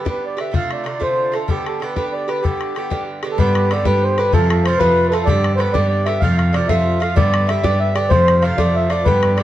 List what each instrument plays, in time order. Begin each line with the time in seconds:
0.05 bouzouki G2 D3 B3 G4, accordion B4, bodhran
0.26 accordion D5
0.37 bouzouki D3 B3 G4, accordion E5, bodhran
0.52 bouzouki C3 D3 A3 F4, accordion F5, bodhran
0.71 accordion D5, bodhran
0.84 bouzouki C3 D3 A3 F4, accordion D5, bodhran
1.00 bouzouki C3 D3 A3 F4, accordion C5, bodhran
1.32 bouzouki D3 A3 F4, accordion A4, bodhran
1.48 bouzouki G2 D3 B3 G4, accordion G4, bodhran
1.66 accordion A4, bodhran
1.80 bouzouki G2 D3 B3 G4, accordion B4, bodhran
1.96 bouzouki G2 D3 B3 G4, accordion B4, bodhran
2.13 accordion D5
2.28 bouzouki D3 B3 G4, accordion B4, bodhran
2.42 bouzouki G2 D3 B3 G4, accordion G4, bodhran
2.61 bodhran
2.75 bouzouki G2 D3 B3 G4, bodhran
2.90 bouzouki G2 D3 B3 G4, bodhran
3.23 bouzouki D3 B3 G4, bodhran
3.31 accordion A4
3.38 bouzouki G2 D3 B3 G4, cello G2, accordion B4, bodhran
3.55 bodhran
3.71 bouzouki G2 D3 B3 G4, accordion D5, bodhran
3.85 cello G2, bouzouki G2 D3 B3 G4, accordion B4, bodhran
4.03 accordion C5
4.18 bouzouki D3 B3 G4, accordion B4, bodhran
4.32 cello F2, bouzouki C3 F3 A3 F4, accordion A4, bodhran
4.50 accordion A4, bodhran
4.65 bouzouki C3 F3 A3 F4, accordion C5, bodhran
4.78 cello F2, bouzouki C3 F3 A3 F4, accordion B4, bodhran
5.08 bouzouki F4, accordion A4 B4
5.13 bouzouki F3 A3, bodhran
5.25 bouzouki G2 D3 B3, cello G2, accordion D5, bodhran
5.29 bouzouki G4
5.44 bodhran
5.56 bouzouki G2 D3 B3, accordion B4 C5
5.60 bouzouki G4, bodhran
5.73 cello G2, bouzouki G2 D3 B3 G4, accordion D5, bodhran
5.89 accordion D5
6.06 bouzouki D3 B3 G4, accordion E5, bodhran
6.20 cello F2, bouzouki C3 F3 A3, accordion F5, bodhran
6.24 bouzouki F4
6.38 accordion F5, bodhran
6.53 bouzouki C3 F3 A3 F4, accordion D5, bodhran
6.68 cello F2, bouzouki C3 F3 A3 F4, accordion E5, bodhran
7.00 bouzouki F3 A3 F4, accordion F5, bodhran
7.16 bouzouki G2 D3 B3 G4, cello G2, accordion D5, bodhran
7.34 bodhran
7.47 bouzouki G2 D3 B3 G4, accordion E5, bodhran
7.63 cello G2, bouzouki G2 D3 B3 G4, accordion D5, bodhran
7.80 accordion E5
7.95 bouzouki D3 B3 G4, accordion D5, bodhran
8.09 cello F2, bouzouki C3 F3 A3 F4, accordion C5, bodhran
8.28 bodhran
8.42 bouzouki C3 F3 A3 F4, accordion F5, bodhran
8.58 cello F2, bouzouki C3 F3 A3 F4, accordion D5, bodhran
8.75 accordion E5
8.90 bouzouki F3 A3 F4, accordion D5, bodhran
9.05 bouzouki G2 D3 B3 G4, cello G2, accordion B4, bodhran
9.23 bodhran
9.36 bouzouki G2 D3 B3, accordion D5, bodhran